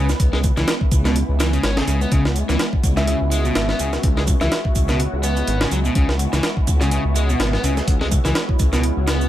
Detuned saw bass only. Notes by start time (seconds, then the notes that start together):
Already playing: C#2
0.20 C#2
0.57 C#2
0.92 C#2
1.29 C#2
1.63 G#1
1.87 C#2
2.12 C#2
2.49 C#2
2.83 C#2
3.21 C#2
3.56 G#1
3.79 C#2
4.04 C#2
4.41 C#2
4.76 C#2
5.13 C#2
5.48 G#1
5.72 C#2
5.95 C#2
6.33 C#2
6.67 C#2
7.05 C#2
7.39 G#1
7.64 C#2
7.88 C#2
8.25 C#2
8.59 C#2
8.97 C#2